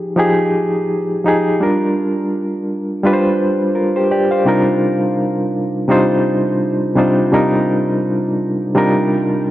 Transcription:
0.00 0.16 F3 medium
0.00 0.18 D#4 medium
0.00 0.18 G4 medium
0.00 0.19 G#4 medium
0.16 0.99 F3 medium
0.16 1.00 D#4 medium
0.16 1.00 G4 medium
0.16 1.01 G#4 loud
1.24 1.53 F3 medium
1.24 1.54 D#4 medium
1.24 1.54 G4 medium
1.24 1.55 G#4 medium
1.60 2.68 G3 medium
1.60 2.69 D4 medium
1.60 2.69 F4 medium
1.60 2.70 A#4 medium
3.03 3.86 G3 medium
3.03 3.86 D4 medium
3.03 3.75 F4 medium
3.03 3.13 B4 medium
3.13 3.80 C5 loud
3.75 3.95 F4 soft
3.75 3.95 A#4 medium
3.96 4.10 G4 medium
3.96 4.11 C5 medium
4.11 4.31 G4 medium
4.11 4.31 D5 medium
4.31 4.66 C5 medium
4.31 4.65 F5 medium
4.45 5.54 C3 medium
4.45 5.54 G3 medium
4.45 5.54 D4 medium
4.45 5.55 D#4 medium
4.45 5.55 F4 medium
4.45 5.55 A#4 medium
5.88 6.71 C3 medium
5.88 6.71 G3 medium
5.88 6.72 D4 medium
5.88 6.72 D#4 medium
5.88 6.72 F4 medium
5.88 6.73 C5 loud
6.96 7.25 C3 medium
6.96 7.25 G3 medium
6.96 7.25 D4 medium
6.96 7.26 D#4 medium
6.96 7.26 F4 medium
6.96 7.26 C5 medium
7.32 8.40 C3 medium
7.32 8.40 G3 medium
7.32 8.40 D4 medium
7.32 8.41 D#4 medium
7.32 8.41 F4 medium
7.32 8.41 A#4 medium
8.74 9.51 C3 medium
8.74 9.51 G3 medium
8.74 9.51 D4 medium
8.74 9.51 D#4 medium
8.74 9.51 F4 medium
8.74 9.51 A#4 loud

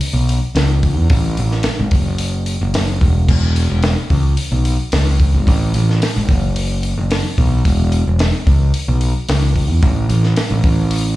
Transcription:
0.01 open hi-hat medium
0.13 0.39 B1 loud
0.29 open hi-hat medium
0.55 0.97 C#2 medium
0.55 snare loud
0.55 open hi-hat medium
0.83 kick medium
0.83 open hi-hat medium
0.97 1.09 E2 medium
1.10 1.35 A1 loud
1.10 kick loud
1.10 open hi-hat medium
1.37 1.63 A1 loud
1.37 open hi-hat medium
1.51 snare soft
1.63 snare loud
1.63 open hi-hat medium
1.79 1.91 G#1 loud
1.91 2.56 F#1 medium
1.91 kick medium
1.91 open hi-hat medium
2.18 open hi-hat medium
2.46 open hi-hat medium
2.61 2.73 F#1 loud
2.74 2.99 F#1 medium
2.74 snare loud
2.74 open hi-hat medium
3.01 3.26 E1 medium
3.01 kick medium
3.01 open hi-hat medium
3.29 3.66 E1 loud
3.29 kick loud
3.29 crash loud
3.56 open hi-hat medium
3.70 3.94 E1 medium
3.83 snare loud
3.83 open hi-hat medium
4.10 4.35 C#2 medium
4.10 kick loud
4.10 open hi-hat medium
4.37 open hi-hat medium
4.52 4.76 B1 loud
4.65 open hi-hat medium
4.92 5.36 C#2 loud
4.92 snare loud
4.92 open hi-hat medium
5.20 kick medium
5.20 open hi-hat medium
5.34 5.46 G#1 medium
5.47 5.72 A1 loud
5.47 kick loud
5.47 open hi-hat medium
5.74 5.99 A1 loud
5.74 open hi-hat medium
5.90 snare soft
6.02 snare loud
6.02 open hi-hat medium
6.16 6.28 G#1 loud
6.29 6.93 F#1 loud
6.29 kick medium
6.29 open hi-hat medium
6.56 open hi-hat loud
6.83 open hi-hat medium
6.98 7.22 F#1 loud
7.11 snare loud
7.11 open hi-hat medium
7.38 7.62 B1 medium
7.38 kick medium
7.38 open hi-hat medium
7.65 8.02 E1 loud
7.65 kick loud
7.65 open hi-hat medium
7.92 open hi-hat medium
8.07 8.31 E1 medium
8.19 snare loud
8.19 open hi-hat medium
8.46 8.71 C#2 medium
8.46 kick loud
8.46 open hi-hat medium
8.74 open hi-hat medium
8.88 9.12 B1 loud
9.01 open hi-hat medium
9.29 9.71 C#2 loud
9.29 snare loud
9.29 open hi-hat medium
9.56 kick medium
9.56 open hi-hat medium
9.71 9.82 E2 medium
9.83 10.07 A1 loud
9.83 kick loud
9.83 open hi-hat medium
10.09 10.34 A1 loud
10.09 open hi-hat medium
10.24 snare soft
10.36 snare loud
10.36 open hi-hat medium
10.51 10.63 A1 loud
10.64 11.16 A1 loud
10.64 kick loud
10.64 open hi-hat medium
10.91 open hi-hat loud

